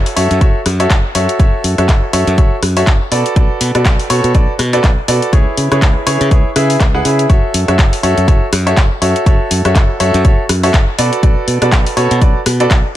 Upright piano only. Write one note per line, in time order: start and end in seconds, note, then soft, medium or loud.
0.00 0.14 F#4 medium
0.00 0.14 A4 medium
0.00 0.14 C#5 medium
0.00 0.14 E5 medium
0.16 0.39 F#4 medium
0.16 0.39 A4 medium
0.16 0.39 C#5 medium
0.16 0.39 E5 loud
0.41 0.58 F#4 medium
0.41 0.58 A4 medium
0.41 0.58 C#5 medium
0.41 0.58 E5 medium
0.80 0.94 F#4 medium
0.80 0.94 A4 medium
0.80 0.94 C#5 medium
0.80 0.94 E5 medium
1.15 1.37 F#4 medium
1.15 1.37 A4 medium
1.15 1.37 C#5 medium
1.15 1.37 E5 medium
1.39 1.75 F#4 medium
1.39 1.75 A4 medium
1.39 1.75 C#5 medium
1.39 1.75 E5 medium
1.78 2.11 F#4 medium
1.78 2.11 A4 medium
1.78 2.11 C#5 medium
1.78 2.11 E5 medium
2.13 2.35 F#4 medium
2.13 2.35 A4 medium
2.13 2.35 C#5 medium
2.13 2.35 E5 loud
2.38 2.55 F#4 medium
2.38 2.55 A4 medium
2.38 2.55 C#5 medium
2.38 2.55 E5 medium
2.77 2.91 F#4 medium
2.77 2.91 A4 medium
2.77 2.91 C#5 medium
2.77 2.91 E5 medium
3.12 3.34 F#4 medium
3.12 3.34 A4 medium
3.12 3.34 B4 medium
3.12 3.34 D5 medium
3.36 3.72 F#4 medium
3.36 3.71 A4 medium
3.36 3.72 B4 medium
3.36 3.72 D5 medium
3.75 4.07 F#4 medium
3.75 4.07 A4 medium
3.75 4.07 B4 medium
3.75 4.07 D5 medium
4.10 4.32 F#4 medium
4.10 4.32 A4 medium
4.10 4.32 B4 medium
4.10 4.32 C#5 loud
4.34 4.52 F#4 medium
4.34 4.52 A4 medium
4.34 4.52 B4 medium
4.34 4.52 D5 medium
4.73 4.88 F#4 medium
4.73 4.88 A4 medium
4.73 4.88 B4 medium
4.73 4.88 D5 medium
5.08 5.30 F#4 medium
5.08 5.30 A4 medium
5.08 5.30 B4 medium
5.08 5.30 D5 medium
5.33 5.68 E4 medium
5.33 5.68 G#4 medium
5.33 5.68 B4 medium
5.33 5.68 C#5 medium
5.72 6.04 E4 medium
5.72 6.04 G#4 medium
5.72 6.04 B4 medium
5.72 6.04 C#5 medium
6.07 6.29 E4 medium
6.07 6.29 G#4 medium
6.07 6.29 B4 medium
6.07 6.29 C#5 loud
6.31 6.48 E4 medium
6.31 6.48 G#4 medium
6.31 6.48 B4 medium
6.31 6.48 C#5 medium
6.56 6.81 E4 medium
6.56 6.81 G#4 medium
6.56 6.81 B4 medium
6.56 6.81 E5 loud
6.94 7.03 E4 medium
6.94 7.03 G#4 medium
6.94 7.03 B4 medium
6.94 7.03 F#5 medium
7.05 7.27 E4 medium
7.05 7.27 G#4 medium
7.05 7.27 B4 medium
7.05 7.27 E5 medium
7.30 7.65 F#4 medium
7.30 7.65 A4 medium
7.30 7.65 C#5 medium
7.30 7.65 E5 medium
7.68 8.01 F#4 medium
7.68 8.01 A4 medium
7.68 8.01 C#5 medium
7.68 8.01 E5 medium
8.03 8.25 F#4 medium
8.03 8.25 A4 medium
8.03 8.25 C#5 medium
8.03 8.25 E5 loud
8.28 8.45 F#4 medium
8.28 8.45 A4 medium
8.28 8.45 C#5 medium
8.28 8.45 E5 medium
8.67 8.81 F#4 medium
8.67 8.81 A4 medium
8.67 8.81 C#5 medium
8.67 8.81 E5 medium
9.02 9.24 F#4 medium
9.02 9.24 A4 medium
9.02 9.24 C#5 medium
9.02 9.24 E5 medium
9.26 9.62 F#4 medium
9.26 9.62 A4 medium
9.26 9.62 C#5 medium
9.26 9.62 E5 medium
9.65 9.98 F#4 medium
9.65 9.98 A4 medium
9.65 9.98 C#5 medium
9.65 9.98 E5 medium
10.00 10.22 F#4 medium
10.00 10.22 A4 medium
10.00 10.22 C#5 medium
10.00 10.22 E5 loud
10.25 10.42 F#4 medium
10.25 10.42 A4 medium
10.25 10.42 C#5 medium
10.25 10.42 E5 medium
10.63 10.78 F#4 medium
10.63 10.78 A4 medium
10.63 10.78 C#5 medium
10.63 10.78 E5 loud
10.98 11.21 F#4 medium
10.98 11.21 A4 medium
10.98 11.21 B4 medium
10.98 11.21 D5 medium
11.23 11.58 F#4 medium
11.23 11.58 A4 medium
11.23 11.58 B4 medium
11.23 11.58 D5 medium
11.62 11.94 F#4 medium
11.62 11.94 A4 medium
11.62 11.94 B4 medium
11.62 11.94 D5 medium
11.97 12.19 F#4 medium
11.97 12.19 A4 medium
11.97 12.19 B4 medium
11.97 12.19 C#5 loud
12.21 12.39 F#4 medium
12.21 12.39 A4 medium
12.21 12.39 B4 medium
12.21 12.39 D5 medium
12.60 12.75 F#4 medium
12.60 12.75 A4 medium
12.60 12.75 B4 medium
12.60 12.75 D5 loud